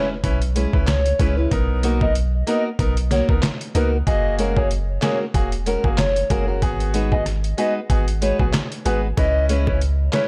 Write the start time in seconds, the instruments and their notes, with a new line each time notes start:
Already playing: steel-string acoustic guitar G#3 C#4 E4 B4, impact
0.24 sub bass B1, grand piano C#4 E4 B4, kick, closed hi-hat
0.42 closed hi-hat
0.55 steel-string acoustic guitar G#3 C#4 E4 B4, closed hi-hat
0.73 sub bass C#2, grand piano C#4 E4 B4, kick
0.87 soft synth lead C#5, cross-stick, snare, clap, closed hi-hat
1.06 closed hi-hat
1.19 sub bass C#2, steel-string acoustic guitar G#3 C#4 E4 B4, grand piano C#4 E4 B4, kick, closed hi-hat
1.37 steel-string acoustic guitar G#3 C#4 E4 B4
1.51 sub bass B1, grand piano B3 D#4 A#4, kick, closed hi-hat
1.83 steel-string acoustic guitar A#3 D#4 F#4 A#4, closed hi-hat
2.01 grand piano B3 D#4 A#4, soft synth lead D#5, kick
2.15 closed hi-hat
2.47 steel-string acoustic guitar A#3 D#4 F#4 A#4, grand piano B3 D#4 A#4, soft synth lead D#5, closed hi-hat
2.79 sub bass B1, grand piano B3 D#4 A#4, kick, closed hi-hat
2.97 closed hi-hat
3.11 steel-string acoustic guitar A#3 D#4 F#4 A#4, soft synth lead C#5, snare, closed hi-hat
3.29 sub bass C#2, grand piano B3 D#4 A#4, kick
3.42 cross-stick, snare, clap, closed hi-hat
3.61 closed hi-hat
3.74 sub bass C#2, steel-string acoustic guitar A#3 D#4 F#4 A#4, grand piano B3 D#4 A#4, soft synth lead B4, closed hi-hat
4.07 sub bass F#1, grand piano A#3 F#4 G#4, soft synth lead D#5, kick, closed hi-hat
4.38 steel-string acoustic guitar G#3 C#4 F#4 A#4, closed hi-hat
4.56 grand piano A#3 F#4 G#4, soft synth lead C#5, kick
4.71 closed hi-hat
5.02 steel-string acoustic guitar G#3 C#4 F#4 A#4, grand piano A#3 F#4 G#4, soft synth lead C#5, snare, clap, closed hi-hat
5.34 sub bass E1, grand piano A#3 F#4 G#4, kick, closed hi-hat
5.52 closed hi-hat
5.66 steel-string acoustic guitar G#3 C#4 F#4 A#4, closed hi-hat
5.84 sub bass F#1, grand piano A#3 F#4 G#4, kick
5.98 soft synth lead C#5, cross-stick, snare, clap, closed hi-hat
6.16 closed hi-hat
6.30 sub bass F#1, steel-string acoustic guitar G#3 C#4 F#4 A#4, grand piano A#3 F#4 G#4, kick, closed hi-hat
6.48 steel-string acoustic guitar G#3 C#4 F#4 A#4
6.62 sub bass G#1, grand piano B3 F#4 G#4, kick, closed hi-hat
6.80 closed hi-hat
6.93 steel-string acoustic guitar G#3 D#4 F#4 B4, closed hi-hat
7.12 grand piano B3 F#4 G#4, soft synth lead D#5, kick
7.26 cross-stick, closed hi-hat
7.44 closed hi-hat
7.57 steel-string acoustic guitar G#3 D#4 F#4 B4, grand piano B3 F#4 G#4, soft synth lead D#5, closed hi-hat
7.90 sub bass G#1, grand piano B3 F#4 G#4, kick, closed hi-hat
8.08 closed hi-hat
8.21 steel-string acoustic guitar G#3 D#4 F#4 B4, soft synth lead C#5, closed hi-hat
8.39 sub bass A#1, grand piano B3 F#4 G#4, kick
8.53 cross-stick, snare, clap, closed hi-hat
8.72 closed hi-hat
8.85 sub bass G#1, steel-string acoustic guitar G#3 D#4 F#4 B4, grand piano B3 F#4 G#4, soft synth lead B4, closed hi-hat
9.17 sub bass C#2, grand piano C#4 E4 B4, soft synth lead D#5, kick, closed hi-hat, high bongo
9.49 steel-string acoustic guitar G#3 C#4 E4 B4, closed hi-hat
9.67 grand piano C#4 E4 B4, soft synth lead C#5, kick, high bongo
9.81 closed hi-hat
10.12 steel-string acoustic guitar G#3 C#4 E4 B4, grand piano C#4 E4 B4, soft synth lead C#5, snare, clap, closed hi-hat, high bongo, low bongo